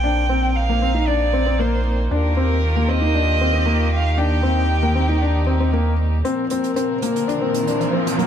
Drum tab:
HH |----------------|----------------|----------------|x-xxx-xxx-xxx-xx|